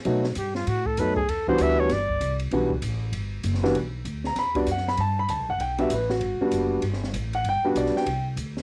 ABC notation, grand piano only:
X:1
M:4/4
L:1/8
Q:"Swing" 1/4=195
K:Em
V:1 name="Grand piano"
z8 | z8 | z8 | z3 ^a b d f b |
a b a f g e B F- | F4 z3 f | g B d g2 z3 |]
V:2 name="Grand piano"
[F,A,B,^DF] z4 z [F,A,B,DA] z | z [E,G,B,DF]3 z4 | [E,G,B,DF] z6 [E,G,B,DF] | z4 z [G,B,DF] z2 |
z4 z [G,B,DF] z2 | z [G,B,DF]3 z4 | z [G,B,DF]3 z4 |]